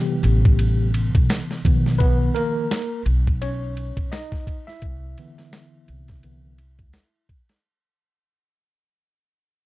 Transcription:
Already playing: C3 E3 G3 B3 G4
0.23 A1, ride
0.45 kick
0.59 ride
0.94 ride
1.15 B1, kick, ride
1.30 snare, hi-hat pedal, ride
1.51 snare
1.65 B1 D#3 F3 B3, kick, ride
1.86 snare
1.98 B3 B4, kick, ride
2.35 A#3 A#4, ride
2.71 snare, hi-hat pedal, ride
3.06 B1, ride
3.27 kick
3.42 C#4 C#5, ride
3.77 ride
3.97 B1, kick, ride
4.12 D#4 D#5, snare, hi-hat pedal, ride
4.32 kick, snare
4.47 kick, ride
4.67 E4 E5, snare
4.82 C2, kick, ride
5.18 D3 E3 B3, ride
5.38 snare, ride
5.53 snare, hi-hat pedal, ride
5.88 C2, ride
6.08 kick, snare, ride
6.23 D3 E3 B3, ride
6.58 ride
6.79 D2, kick, ride
6.93 snare, hi-hat pedal, ride
7.29 kick, ride
7.49 snare, ride

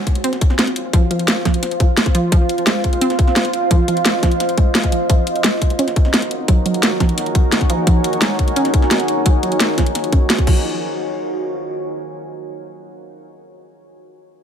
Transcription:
Already playing: F4 C5 F5 G#5
0.07 kick, closed hi-hat
0.15 closed hi-hat
0.24 C4, closed hi-hat
0.33 snare, closed hi-hat
0.41 kick, closed hi-hat
0.50 snare
0.59 C4, snare, closed hi-hat
0.67 snare, closed hi-hat
0.76 closed hi-hat
0.93 F3, kick, closed hi-hat
1.11 F3, closed hi-hat
1.19 closed hi-hat
1.28 snare, closed hi-hat
1.45 F3, kick, snare, closed hi-hat
1.54 closed hi-hat
1.63 snare, closed hi-hat
1.71 closed hi-hat
1.80 F3, kick, closed hi-hat
1.97 snare, closed hi-hat
2.06 kick, snare, closed hi-hat
2.15 F3, closed hi-hat
2.32 F3, kick, closed hi-hat
2.49 closed hi-hat
2.58 closed hi-hat
2.67 G#3 D#5, snare, closed hi-hat
2.84 kick, closed hi-hat
2.93 closed hi-hat
3.01 C4, closed hi-hat
3.10 snare, closed hi-hat
3.19 kick, closed hi-hat
3.27 snare
3.36 C4, snare, closed hi-hat
3.45 snare, closed hi-hat
3.53 closed hi-hat
3.71 F3, kick, closed hi-hat
3.88 F3, closed hi-hat
3.97 closed hi-hat
4.05 snare, closed hi-hat
4.23 F3, kick, snare, closed hi-hat
4.32 closed hi-hat
4.40 snare, closed hi-hat
4.49 closed hi-hat
4.58 G#3, kick, closed hi-hat
4.75 snare, closed hi-hat
4.84 kick, snare, closed hi-hat
4.92 F3, closed hi-hat
5.09 F3 D#4 F#4 A#4, kick, closed hi-hat
5.27 closed hi-hat
5.36 closed hi-hat
5.44 G#3 C#5, snare, closed hi-hat
5.62 kick, closed hi-hat
5.70 closed hi-hat
5.79 C#4, closed hi-hat
5.88 G#5, snare, closed hi-hat
5.96 kick, closed hi-hat
6.05 snare
6.14 C4, snare, closed hi-hat
6.22 snare, closed hi-hat
6.31 closed hi-hat
6.48 F#3, kick, closed hi-hat
6.66 F#3, closed hi-hat
6.74 closed hi-hat
6.83 snare, closed hi-hat
7.00 F3, kick, snare, closed hi-hat
7.09 closed hi-hat
7.18 snare, closed hi-hat
7.26 closed hi-hat
7.35 F3, kick, closed hi-hat
7.52 snare, closed hi-hat
7.61 kick, snare, closed hi-hat
7.70 F3, closed hi-hat
7.87 F3, kick, closed hi-hat
8.04 closed hi-hat
8.13 closed hi-hat
8.22 G#3, snare, closed hi-hat
8.39 kick, closed hi-hat
8.48 closed hi-hat
8.56 C#4, closed hi-hat
8.65 snare, closed hi-hat
8.74 kick, closed hi-hat
8.82 snare
8.91 C4, snare, closed hi-hat
9.00 snare, closed hi-hat
9.08 closed hi-hat
9.26 F#3, kick, closed hi-hat
9.43 F#3, closed hi-hat
9.52 closed hi-hat
9.60 snare, closed hi-hat
9.78 F3, kick, snare, closed hi-hat
9.86 closed hi-hat
9.95 snare, closed hi-hat
10.04 closed hi-hat
10.12 C#4, kick, closed hi-hat
10.30 snare, closed hi-hat
10.38 kick, snare, closed hi-hat
10.47 F3 F4, kick, crash
10.52 C5

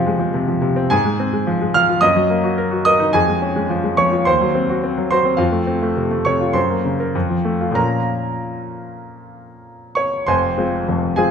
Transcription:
Already playing: F2 C3 F3 G#3 C4 F4 G#4 F5 G#5
0.06 G#3
0.19 F3
0.34 C3
0.48 F3
0.61 C3
0.76 C4
0.90 G#2 G#4 G#5
1.05 G#3
1.20 C4
1.33 G#3
1.47 F3
1.61 G#3
1.74 F3 F5 F6
1.89 F4
2.01 F#2 D#5 D#6
2.16 F#3
2.30 A#3
2.44 F#4
2.58 A#4
2.71 F#4
2.85 A#4 D#5 D#6
3.00 D#4
3.13 F2 G#4 G#5
3.28 G#3
3.42 C#4
3.56 G#3
3.70 F3
3.84 G#3
3.97 F3 C#5 C#6
4.12 F4
4.25 D#2 C5 C6
4.41 F#3
4.55 C4
4.69 F#4
4.84 C4
4.98 F#3
5.11 F#4 C5 C6
5.25 C4
5.37 F2 F4 F5
5.52 A3
5.67 C4
5.82 A3
5.96 C3
6.11 A3
6.25 C3 C#5 C#6
6.41 F4
6.53 F#2 C5 C6
6.70 A#3
6.85 C#3
7.00 A#4
7.15 F2
7.30 F3
7.45 A3
7.61 F4
7.71 A#2 F3 A#3 C#4
7.75 A#4 A#5
9.95 C#5 C#6
10.27 F1 F2 C5 G#5 C6
10.58 G#3 C4 F4
10.88 F1 F2
11.16 G#3 C4 F4 G#4 G#5

